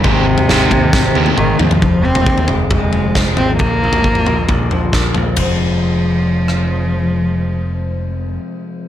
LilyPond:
<<
  \new Staff \with { instrumentName = "Cello" } { \clef bass \time 4/4 \key f \minor \tempo 4 = 135 c2. ees8 f8~ | f8 c'4 r8 aes4. c'8 | bes2. r4 | f1~ |
f1 | }
  \new Staff \with { instrumentName = "Clean electric guitar" } { \clef bass \time 4/4 \key f \minor aes,8 ees8 ees8 aes8 c'8 ees8 aes8 ees8 | f,8 c8 c8 aes8 c8 f8 aes8 c8 | bes,8 f8 bes,8 bes8 bes,8 f8 bes8 bes,8 | <f, c f aes c'>1~ |
<f, c f aes c'>1 | }
  \new Staff \with { instrumentName = "Distorted electric guitar" } { \clef bass \time 4/4 \key f \minor <aes, ees aes>8 <aes, ees>8 <aes, ees aes>8 <aes, ees>8 <aes, ees>8 <aes, ees aes>8 <aes, ees>8 <aes, ees>8 | r1 | r1 | r1 |
r1 | }
  \new Staff \with { instrumentName = "Picked electric bass" } { \clef bass \time 4/4 \key f \minor aes,,4 aes,,8 ees,8 aes,,8 ees,8 aes,,8 ees,8 | f,,8 f,,8 ees,8 f,,8 f,,8 f,,8 f,,8 aes,,8 | bes,,8 bes,,8 aes,,8 bes,,8 bes,,8 bes,,8 bes,,8 bes,,8 | f,,1~ |
f,,1 | }
  \new DrumStaff \with { instrumentName = "Drums" } \drummode { \time 4/4 <bd tomfh>8. tomfh16 sn8 <bd tomfh>8 <bd sn>8 tommh16 tommh16 toml8 tomfh16 tomfh16 | <bd tomfh>8. <tomfh toml>16 bd16 tomfh16 <tomfh toml>8 <bd tomfh toml>8 tomfh8 <bd sn>8 tomfh8 | <bd tomfh>8. <tomfh toml>16 bd16 tomfh16 <tomfh toml>8 <bd tomfh toml>8 tomfh8 <bd sn>8 tomfh8 | <bd cymr>4 r4 r8 ss8 r4 |
r4 r4 r4 r4 | }
>>